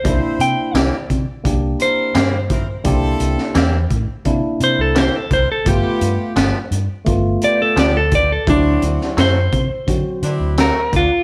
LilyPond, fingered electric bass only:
\new Staff \with { instrumentName = "Fingered electric bass" } { \clef bass \time 4/4 \key c \major \tempo 4 = 85 c,16 r16 c16 r16 c,16 r16 c16 r16 c,8 r8 g,4 | c,8 c,16 r16 e,8 a,16 r16 c16 r16 c16 c,8 r16 c,16 r16 | g,,16 r16 g,16 r16 g,,16 r16 g,16 r16 g,,8 r8 d,4 | d,8 d,16 r16 fis,8 c16 r16 d16 r16 d16 d,8 r16 d,16 r16 | }